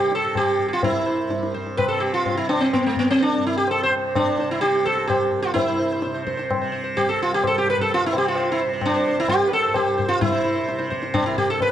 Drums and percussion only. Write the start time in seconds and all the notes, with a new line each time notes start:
0.12 tabla te
0.35 tabla na, tabla ge
0.59 tabla ge
0.83 tabla tin, tabla ge
1.30 tabla te
1.43 tabla te
1.55 tabla ke
1.67 tabla te
1.78 tabla na, tabla ge
2.26 tabla tin, tabla ge
2.49 tabla na
2.73 tabla na, tabla ge
2.96 tabla ge
3.20 tabla tin
3.68 tabla na
3.92 tabla na
4.15 tabla na, tabla ge
4.38 tabla te
4.62 tabla te
4.75 tabla te
4.87 tabla ke
4.97 tabla te
5.10 tabla na, tabla ge
5.33 tabla ge
5.56 tabla tin, tabla ge
6.02 tabla te
6.16 tabla te
6.27 tabla ke
6.39 tabla te
6.51 tabla na, tabla ge
6.97 tabla tin, tabla ge
7.44 tabla na, tabla ge
7.67 tabla te
7.78 tabla ge
7.90 tabla tin
8.13 tabla na
8.35 tabla na
8.81 tabla na, tabla ge
9.28 tabla na, tabla ge
9.52 tabla te
9.74 tabla na, tabla ge
9.99 tabla ge
10.22 tabla tin, tabla ge
10.69 tabla te
10.80 tabla te
10.92 tabla ke
11.03 tabla te
11.14 tabla na, tabla ge
11.37 tabla ge
11.60 tabla tin, tabla ge